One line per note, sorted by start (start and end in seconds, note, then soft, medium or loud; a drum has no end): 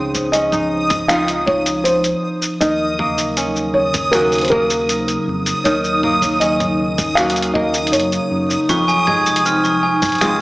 0.00 2.14 C#2 medium
0.00 1.91 C#3 medium
0.00 2.57 F3 medium
0.00 1.09 C4 medium
0.00 0.34 D#4 medium
0.00 2.57 D#4 medium
0.00 1.09 F4 medium
0.00 0.36 C5 medium
0.00 10.41 D#6 medium
0.15 kick medium
0.15 closed hi-hat soft
0.15 cabasa medium
0.32 1.15 C#4 medium
0.32 1.11 D#5 loud
0.32 closed hi-hat medium
0.32 cabasa soft
0.52 1.09 D#4 medium
0.52 mid tom soft
0.52 cabasa soft
0.90 kick loud
0.90 closed hi-hat soft
0.90 mid tom medium
0.90 cabasa medium
1.08 2.89 C4 medium
1.08 2.72 D#4 medium
1.08 2.70 F4 medium
1.08 1.17 F5 loud
1.08 finger snap medium
1.08 closed hi-hat medium
1.08 cabasa medium
1.28 closed hi-hat soft
1.28 cabasa soft
1.46 1.86 C#5 medium
1.46 kick loud
1.66 closed hi-hat soft
1.66 cabasa medium
1.84 2.38 C5 medium
1.84 closed hi-hat medium
1.84 cabasa medium
2.04 closed hi-hat soft
2.04 cabasa soft
2.42 closed hi-hat soft
2.42 cabasa medium
2.60 5.18 D#2 loud
2.60 8.65 C#3 medium
2.60 5.64 D#3 medium
2.60 8.65 F#3 medium
2.60 10.41 D#4 medium
2.60 3.71 D#5 medium
2.60 kick medium
2.60 closed hi-hat medium
2.60 cabasa medium
2.99 4.13 A#3 medium
2.99 mid tom medium
3.18 closed hi-hat soft
3.18 cabasa medium
3.37 4.14 C#4 medium
3.37 closed hi-hat medium
3.37 cabasa medium
3.56 cabasa soft
3.74 4.14 C#5 medium
3.94 kick medium
3.94 closed hi-hat soft
3.94 mid tom medium
3.94 cabasa medium
4.11 4.51 A#3 medium
4.11 6.40 C#4 medium
4.11 7.17 F#4 medium
4.11 4.44 A#4 medium
4.11 finger snap medium
4.11 closed hi-hat medium
4.11 cabasa medium
4.32 closed hi-hat soft
4.32 cabasa soft
4.35 closed hi-hat soft
4.38 closed hi-hat soft
4.41 4.51 C5 medium
4.41 closed hi-hat soft
4.45 closed hi-hat soft
4.48 6.03 A#3 medium
4.48 5.23 A#4 medium
4.48 kick loud
4.48 closed hi-hat soft
4.70 closed hi-hat soft
4.70 cabasa medium
4.89 closed hi-hat medium
4.89 cabasa medium
5.08 closed hi-hat soft
5.08 cabasa soft
5.27 5.53 F2 medium
5.46 closed hi-hat soft
5.46 cabasa medium
5.64 7.92 D#2 medium
5.64 8.75 D#3 medium
5.64 6.37 C#5 medium
5.64 kick loud
5.64 closed hi-hat medium
5.64 cabasa medium
5.84 cabasa soft
6.03 7.17 A#3 medium
6.03 mid tom medium
6.22 kick medium
6.22 closed hi-hat soft
6.22 cabasa medium
6.40 7.18 C#4 medium
6.40 7.19 D#5 medium
6.40 closed hi-hat medium
6.40 cabasa soft
6.60 closed hi-hat soft
6.60 mid tom medium
6.60 cabasa soft
6.98 kick loud
6.98 closed hi-hat soft
6.98 mid tom medium
6.98 cabasa medium
7.15 7.55 A#3 medium
7.15 8.92 C#4 medium
7.15 8.78 F#4 medium
7.15 7.52 F5 loud
7.15 finger snap medium
7.15 closed hi-hat medium
7.15 cabasa soft
7.30 closed hi-hat soft
7.36 closed hi-hat soft
7.36 cabasa soft
7.42 closed hi-hat soft
7.54 9.48 A#3 medium
7.54 7.94 D#5 medium
7.54 kick medium
7.74 closed hi-hat soft
7.74 cabasa medium
7.87 closed hi-hat soft
7.92 8.19 F#2 medium
7.92 8.65 C#5 medium
7.92 closed hi-hat medium
7.92 cabasa medium
8.00 closed hi-hat soft
8.12 closed hi-hat soft
8.12 cabasa soft
8.31 8.57 F#2 medium
8.50 cabasa medium
8.68 10.41 F1 medium
8.68 10.41 F2 medium
8.68 10.41 C3 medium
8.68 10.41 F3 medium
8.68 8.87 C#6 medium
8.68 kick loud
8.68 closed hi-hat medium
8.68 cabasa medium
8.88 9.06 G#5 loud
8.88 cabasa soft
9.07 10.21 G#3 medium
9.07 9.25 G#6 medium
9.07 mid tom medium
9.26 9.44 D#6 medium
9.26 closed hi-hat soft
9.26 cabasa medium
9.36 closed hi-hat medium
9.45 10.21 C4 medium
9.45 9.64 F6 medium
9.45 cabasa soft
9.64 9.82 C#6 medium
9.64 cabasa soft
9.83 10.01 G#5 loud
10.02 10.20 G#6 medium
10.02 kick medium
10.02 closed hi-hat soft
10.02 mid tom medium
10.02 cabasa medium
10.05 closed hi-hat soft
10.09 closed hi-hat soft
10.12 closed hi-hat soft
10.15 closed hi-hat soft
10.18 10.41 G#3 medium
10.18 10.39 D#6 medium
10.18 finger snap medium
10.18 closed hi-hat soft
10.21 10.41 C4 medium
10.21 10.41 F4 medium
10.21 closed hi-hat medium
10.21 cabasa soft